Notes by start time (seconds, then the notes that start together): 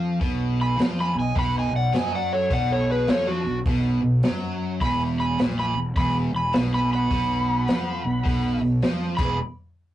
Already playing: F2 F3
0.21 B1 B2, kick, open hi-hat
0.61 G#5 B5
0.77 F2 F3, snare, open hi-hat
1.00 G#5 B5
1.14 B1 B2
1.19 D#5 G#5
1.36 B1 B2 F#5 B5, kick, open hi-hat
1.58 D#5 G#5
1.72 B1 B2
1.76 D5 F#5
1.93 F#2 F#3 D#5 G#5, snare, open hi-hat
2.15 D5 F#5
2.33 A4 C#5
2.50 B1 B2 D5 F#5, kick, open hi-hat
2.71 A4 C#5
2.90 G#4 B4
3.07 F2 F3 A4 C#5, snare, open hi-hat
3.27 D4 F#4
3.45 B1 B2
3.66 B1 B2, kick, open hi-hat
4.03 B1 B2
4.23 F#2 F#3, snare, open hi-hat
4.80 E1 E2 B5, kick, open hi-hat
4.85 G#5
5.20 G#5 B5
5.39 A#1 A#2, snare, open hi-hat
5.59 G#5 B5
5.74 E1 E2
5.96 E1 E2 G#5 B5, kick, open hi-hat
6.33 E1 E2 B5
6.37 G#5
6.53 B1 B2, snare, open hi-hat
6.74 G#5 B5
6.93 F#5 B5
7.11 B1 B2, kick, open hi-hat
7.68 F2 F3, snare, open hi-hat
8.04 B1 B2
8.24 B1 B2, kick, open hi-hat
8.61 B1 B2
8.82 F2 F3, snare, open hi-hat
9.17 E1 E3 B3 D4 G#4 B5, kick, crash